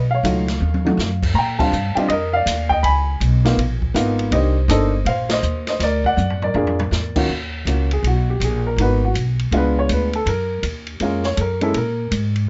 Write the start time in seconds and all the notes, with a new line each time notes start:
Already playing: B1
0.11 C#5 F5
0.23 C#2 F#3 A3 D#4 F4, hi-hat pedal, ride
0.48 snare, ride
0.60 D#2, high tom
0.74 high tom
0.85 F#3 A3 D#4 F#4, high tom
0.97 F#2, snare, hi-hat pedal
1.23 kick, crash
1.34 A#2 A#5
1.39 G5
1.59 G3 C4 D4 F4 F5 A5, kick, crash
1.72 G2, hi-hat pedal
1.95 G3 C4 D4 F4 D#5 G5, muted upright bass stroke, ride
2.08 F2 A#4 D#5, ride
2.33 D5 F5
2.46 D#2, snare, hi-hat pedal, ride
2.69 D#5 G5, kick
2.83 C#2 G#5 B5, ride
3.20 B1, hi-hat pedal, ride
3.45 A#3 B3 D#4 F4, snare, ride
3.57 A#1, ride
3.82 kick
3.94 G#1 A#3 B3 D#4 F4, hi-hat pedal, ride
4.19 ride
4.31 C2 A#3 D4 D#4 G4 C5 D#5, ride
4.68 G1 A#3 D4 D#4 A4 C5 D#5, hi-hat pedal, ride
5.05 A#1 C5 F5, ride
5.29 C5 D#5, snare, ride
5.42 D#2, hi-hat pedal
5.67 C5 D#5, snare, ride
5.80 D2 D5, snare, ride
5.84 A#4
6.04 D5 F#5, kick
6.17 F#2, hi-hat pedal, high tom
6.30 floor tom
6.42 A#4 D5, floor tom
6.54 F2 A#3 D4 F4 G#4, floor tom
6.67 floor tom
6.79 floor tom
6.91 E2, snare, hi-hat pedal
7.16 D#3 A#3 C#4 F4 F#4, kick, crash
7.28 D#2
7.65 C#2 A#3 C#4 F4 F#4, hi-hat pedal, ride
7.91 G#4, ride
8.03 B1, ride
8.07 F#4
8.30 G4
8.40 A#1, hi-hat pedal, ride
8.44 G#4
8.67 A#4
8.76 G#1 A#3 B3 D#4, ride
8.81 F#4 B4
9.05 F#4
9.14 B1, hi-hat pedal, ride
9.39 ride
9.51 C#2 G#3 B3 D4 F4, ride
9.57 B4
9.79 C#5
9.89 D2 B4, hi-hat pedal, ride
10.13 A4, ride
10.26 F#2 A#4, ride
10.63 D#2, hi-hat pedal, ride
10.87 ride
11.00 F2 G#3 A#3 C#4 F4 A#4, ride
11.23 C#5, snare
11.37 F#2 A4, hi-hat pedal, ride
11.41 A#4
11.61 G#3 A#3 C#4 E4 A4, ride
11.74 A#2 A#4, ride
12.11 G#2, hi-hat pedal, ride
12.36 ride